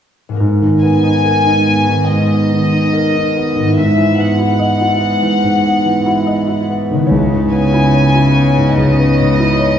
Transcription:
0.29 3.58 G#2 soft
0.29 4.22 A#3 soft
0.34 3.62 B3 soft
0.34 3.78 A#4 soft
0.40 2.05 G#2 soft
0.40 3.73 G#2 soft
0.62 0.96 D#3 soft
0.83 1.17 B3 soft
0.83 2.05 G#5 soft
1.04 1.38 D#4 soft
1.25 1.59 A#4 soft
1.46 1.80 D#4 soft
1.67 2.00 B3 soft
1.88 2.22 D#3 soft
2.09 3.73 G#2 soft
2.09 3.77 D#5 soft
2.31 2.64 B3 soft
2.53 2.86 D#3 soft
2.73 3.06 D#4 soft
2.93 3.27 A#4 soft
3.16 3.48 D#4 soft
3.36 3.69 B3 soft
3.56 7.05 G#2 soft
3.56 3.77 D#3 soft
3.64 6.96 B3 soft
3.68 7.01 E4 soft
3.72 7.12 E5 soft
3.77 5.41 G#2 soft
3.77 7.07 G#2 soft
3.77 4.18 E5 soft
3.98 4.31 E3 soft
4.19 4.52 B3 soft
4.19 6.69 F#5 soft
4.39 4.73 E4 soft
4.59 4.94 D#5 soft
4.81 5.15 E4 soft
5.00 5.35 B3 soft
5.23 5.56 E3 soft
5.43 7.06 G#2 soft
5.64 5.98 B3 soft
5.86 6.19 E3 soft
6.06 6.40 E4 soft
6.27 6.60 D#5 soft
6.48 6.81 E4 soft
6.70 7.03 B3 soft
6.91 9.79 C#3 soft
6.91 7.11 D#3 soft
6.97 9.79 B3 soft
7.02 9.79 E4 soft
7.06 9.79 C#3 soft
7.06 9.79 C#5 soft
7.11 8.73 C#2 soft
7.32 7.65 G#2 soft
7.52 7.85 B3 soft
7.52 8.72 G#5 soft
7.73 8.06 E4 soft
7.94 8.27 C#5 soft
8.14 8.48 E4 soft
8.35 8.68 B3 soft
8.57 8.89 G#2 soft
8.77 9.79 C#2 soft
8.77 9.79 D#5 medium
8.99 9.31 B3 soft
9.20 9.52 G#2 soft
9.39 9.72 E4 soft
9.60 9.79 C#5 soft

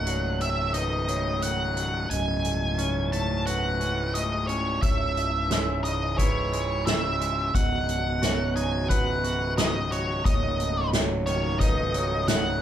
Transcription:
0.00 2.06 C#1 medium
0.00 1.08 D#2 soft
0.00 2.06 D#3 medium
0.00 4.78 F#3 medium
0.00 2.08 A3 medium
0.00 2.06 F#4 medium
0.00 2.54 F#4 soft
0.00 0.44 F#5 medium
0.06 1.07 F#3 medium
0.06 0.74 C#5 medium
0.06 closed hi-hat medium
0.40 1.41 D#3 soft
0.40 0.74 E5 medium
0.40 closed hi-hat soft
0.74 2.10 D#4 medium
0.74 1.08 B4 medium
0.74 1.44 D#5 medium
0.74 closed hi-hat medium
1.08 1.75 F#3 medium
1.08 1.76 C#5 medium
1.08 closed hi-hat soft
1.42 2.10 D#3 soft
1.42 2.10 F#5 medium
1.42 closed hi-hat medium
1.76 2.11 F#3 soft
1.76 closed hi-hat soft
2.09 4.79 C#1 medium
2.09 3.80 F#2 soft
2.09 7.50 C#3 medium
2.09 4.79 A3 medium
2.09 7.49 E4 medium
2.09 2.79 D#5 medium
2.09 3.12 G#5 medium
2.09 closed hi-hat medium
2.45 closed hi-hat medium
2.78 3.79 C#4 medium
2.78 3.47 C#5 medium
2.78 closed hi-hat medium
3.12 4.13 A3 soft
3.12 3.46 A5 medium
3.12 closed hi-hat soft
3.46 4.82 F#4 medium
3.46 4.14 B4 medium
3.46 4.17 F#5 medium
3.46 closed hi-hat medium
3.81 4.48 C#4 soft
3.81 closed hi-hat soft
4.14 4.82 A3 soft
4.14 4.47 D#5 medium
4.14 closed hi-hat medium
4.47 4.83 C#4 soft
4.47 4.82 C#5 medium
4.47 closed hi-hat soft
4.82 7.50 C#1 medium
4.82 6.52 C#2 medium
4.82 7.51 E3 medium
4.82 7.51 G#3 medium
4.82 5.17 C#5 medium
4.82 5.80 E5 medium
4.82 kick medium
4.82 closed hi-hat medium
5.16 5.50 D#6 medium
5.16 closed hi-hat soft
5.50 6.51 G#3 soft
5.50 6.18 C#5 medium
5.50 snare medium
5.50 closed hi-hat medium
5.84 6.85 C#3 medium
5.84 6.17 D#5 medium
5.84 closed hi-hat soft
6.18 7.54 E4 medium
6.18 6.52 B4 medium
6.18 6.86 C#5 medium
6.18 kick medium
6.18 closed hi-hat medium
6.52 7.19 G#3 medium
6.52 7.20 C#5 medium
6.52 closed hi-hat soft
6.86 7.54 C#3 soft
6.86 7.56 E5 medium
6.86 snare medium
6.86 closed hi-hat medium
7.20 7.54 G#3 soft
7.20 closed hi-hat medium
7.53 10.21 C#1 medium
7.53 9.24 B2 medium
7.53 12.62 D#3 medium
7.53 12.62 F#3 medium
7.53 10.22 B3 medium
7.53 12.62 F#4 medium
7.53 8.22 D#5 medium
7.53 8.55 F#5 medium
7.53 kick medium
7.53 closed hi-hat medium
7.89 closed hi-hat medium
8.22 9.23 F#4 medium
8.22 8.90 C#5 medium
8.22 snare medium
8.22 closed hi-hat medium
8.56 9.56 D#4 medium
8.56 8.89 G#5 medium
8.56 closed hi-hat soft
8.89 10.25 B4 medium
8.89 9.58 B4 medium
8.89 9.53 F#5 medium
8.89 kick medium
8.89 closed hi-hat medium
9.24 9.91 F#4 medium
9.24 closed hi-hat soft
9.58 10.25 D#4 medium
9.58 9.92 D#5 medium
9.58 snare medium
9.58 closed hi-hat medium
9.91 12.62 F#4 medium
9.91 10.25 C#5 medium
9.91 closed hi-hat soft
10.24 12.62 C#1 medium
10.24 11.94 D#2 medium
10.24 12.62 A3 medium
10.24 10.59 C#5 medium
10.24 10.89 D#5 medium
10.24 kick medium
10.24 closed hi-hat medium
10.60 10.93 D#5 medium
10.60 closed hi-hat medium
10.93 11.93 F#3 medium
10.93 11.61 C#5 medium
10.93 snare medium
10.93 closed hi-hat medium
11.26 12.27 D#3 medium
11.26 11.59 C#5 medium
11.26 closed hi-hat soft
11.60 12.62 D#4 medium
11.60 11.94 B4 medium
11.60 12.30 D#5 medium
11.60 kick medium
11.60 closed hi-hat medium
11.94 12.60 F#3 medium
11.94 12.62 C#5 medium
11.94 closed hi-hat medium
12.28 12.62 D#3 medium
12.28 12.59 F#5 medium
12.28 snare medium
12.28 closed hi-hat medium

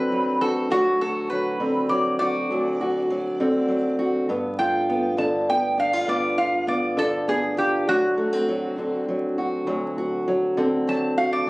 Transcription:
0.00 0.69 D2 medium
0.00 1.59 D3 medium
0.00 0.10 F#3 medium
0.00 0.67 C4 medium
0.00 0.40 F#4 medium
0.00 0.39 B4 loud
0.12 0.70 F#3 medium
0.41 0.67 F#4 medium
0.41 0.69 A4 medium
0.70 2.49 D2 medium
0.70 1.30 F#3 medium
0.70 1.00 F#4 loud
1.01 2.19 F#4 medium
1.01 1.29 A4 medium
1.30 1.89 F#3 medium
1.30 1.88 B4 medium
1.60 3.39 D3 medium
1.60 3.39 C4 medium
1.89 2.50 F#3 medium
1.89 2.18 D5 medium
2.19 2.80 F#4 medium
2.19 3.95 D5 medium
2.50 4.29 D2 medium
2.50 3.09 F#3 medium
2.81 3.98 F#4 medium
3.10 3.67 F#3 medium
3.40 5.16 D3 medium
3.40 4.26 C4 medium
3.68 4.29 F#3 medium
3.99 4.25 F#4 medium
4.29 6.05 G2 medium
4.29 4.88 B3 medium
4.59 5.77 F4 medium
4.59 5.17 G5 medium
4.89 5.48 B3 medium
5.17 6.96 D3 medium
5.17 5.78 D4 medium
5.17 5.48 A5 medium
5.49 6.07 B3 medium
5.49 5.78 G5 medium
5.78 5.93 D4 medium
5.78 6.08 F5 medium
5.93 6.37 F4 medium
6.07 7.84 G2 medium
6.07 6.66 B3 medium
6.07 6.38 D5 medium
6.38 7.56 F4 medium
6.38 6.67 F5 medium
6.67 7.27 B3 medium
6.67 6.97 D5 medium
6.97 8.78 D3 medium
6.97 8.17 D4 medium
6.97 7.28 A4 loud
7.28 7.84 B3 medium
7.28 7.58 G#4 medium
7.57 7.84 F4 medium
7.57 7.87 G4 medium
7.87 9.66 D2 medium
7.87 8.48 F#3 medium
7.87 9.04 F#4 loud
8.18 8.33 A3 medium
8.33 8.77 C4 soft
8.49 9.08 F#3 medium
8.78 10.57 D3 medium
8.78 10.58 C4 medium
9.08 9.67 F#3 medium
9.38 9.97 F#4 medium
9.67 11.46 D2 medium
9.67 10.27 F#3 medium
9.98 11.18 F#4 medium
10.28 10.87 F#3 medium
10.57 11.50 D3 medium
10.57 11.49 C4 medium
10.87 11.47 F#3 medium
10.87 11.17 A5 loud
11.18 11.50 F#4 medium
11.18 11.32 F5 medium
11.33 11.47 D5 medium
11.46 11.50 D2 medium

